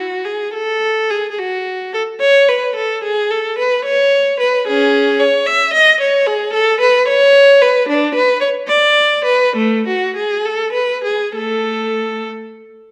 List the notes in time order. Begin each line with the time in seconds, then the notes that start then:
Already playing: F#4
0.25 G#4
0.53 A4
1.10 G#4
1.31 G#4
1.38 F#4
1.94 A4
2.21 C#5
2.49 B4
2.76 A4
3.04 G#4
3.30 A4
3.58 B4
3.85 C#5
4.40 B4
4.67 C#4 G#4
5.20 C#5
5.46 E5
5.73 D#5
6.00 C#5
6.26 G#4
6.53 A4
6.80 B4
7.08 C#5
7.62 B4
7.88 D4
8.15 B4
8.41 C#5
8.68 D5
9.25 B4
9.56 A3
9.87 F#4
10.16 G#4
10.45 A4
10.72 B4
11.04 G#4
11.35 A3 A4